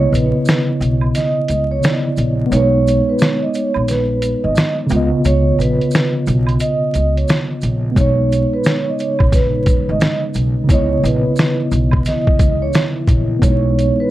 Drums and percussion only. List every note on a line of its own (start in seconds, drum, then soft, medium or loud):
0.14 closed hi-hat medium
0.14 maracas medium
0.45 snare loud
0.45 maracas medium
0.50 closed hi-hat medium
0.81 closed hi-hat medium
0.81 maracas soft
1.01 high woodblock medium
1.15 snare soft
1.15 closed hi-hat medium
1.15 maracas medium
1.48 closed hi-hat medium
1.48 maracas medium
1.83 snare loud
1.83 closed hi-hat medium
1.83 maracas medium
2.17 closed hi-hat medium
2.17 maracas medium
2.52 closed hi-hat medium
2.52 maracas medium
2.87 closed hi-hat medium
2.87 maracas medium
3.19 snare loud
3.19 maracas medium
3.23 closed hi-hat medium
3.54 closed hi-hat medium
3.54 maracas soft
3.74 high woodblock medium
3.88 snare soft
3.88 closed hi-hat medium
3.88 maracas medium
4.22 closed hi-hat medium
4.22 maracas medium
4.55 snare loud
4.55 closed hi-hat medium
4.55 maracas medium
4.89 closed hi-hat medium
4.89 maracas soft
5.25 closed hi-hat medium
5.25 maracas medium
5.60 closed hi-hat medium
5.60 maracas medium
5.81 closed hi-hat soft
5.91 maracas medium
5.95 snare loud
5.95 closed hi-hat medium
6.27 closed hi-hat medium
6.27 maracas soft
6.47 closed hi-hat soft
6.47 high woodblock medium
6.60 closed hi-hat medium
6.60 maracas medium
6.94 closed hi-hat medium
6.94 maracas medium
7.17 closed hi-hat soft
7.28 snare loud
7.28 closed hi-hat medium
7.28 maracas medium
7.61 closed hi-hat medium
7.61 maracas soft
7.96 kick loud
7.96 closed hi-hat medium
7.96 maracas medium
8.32 closed hi-hat medium
8.32 maracas medium
8.64 snare loud
8.64 closed hi-hat medium
8.64 maracas medium
8.99 closed hi-hat medium
8.99 maracas soft
9.19 kick loud
9.19 high woodblock medium
9.32 kick medium
9.32 snare soft
9.32 closed hi-hat medium
9.32 maracas medium
9.66 kick loud
9.66 closed hi-hat medium
9.66 maracas medium
10.00 snare loud
10.00 closed hi-hat medium
10.00 maracas medium
10.34 closed hi-hat medium
10.34 maracas medium
10.69 kick loud
10.69 closed hi-hat medium
10.69 maracas medium
11.05 closed hi-hat medium
11.05 maracas medium
11.36 snare loud
11.36 maracas medium
11.40 closed hi-hat medium
11.71 closed hi-hat medium
11.71 maracas soft
11.91 kick medium
11.91 high woodblock medium
12.05 snare soft
12.05 closed hi-hat medium
12.05 maracas medium
12.27 kick medium
12.39 kick loud
12.39 closed hi-hat medium
12.39 maracas medium
12.73 snare loud
12.73 closed hi-hat medium
12.73 maracas medium
13.07 kick medium
13.07 closed hi-hat medium
13.07 maracas medium
13.42 kick loud
13.42 closed hi-hat medium
13.42 maracas medium
13.79 closed hi-hat medium
13.79 maracas soft